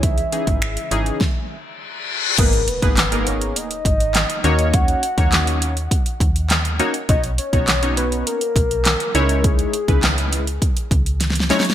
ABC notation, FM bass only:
X:1
M:4/4
L:1/16
Q:1/4=102
K:C#dor
V:1 name="FM bass" clef=bass
C,,3 G,,,3 G,,,2 z8 | G,,,3 G,,,6- G,,, G,,,4 D,,2- | D,,3 D,,6- D,, D,,6 | B,,,3 B,,,6- B,,, B,,,4 C,,2- |
C,,3 C,,6- C,, C,,6 |]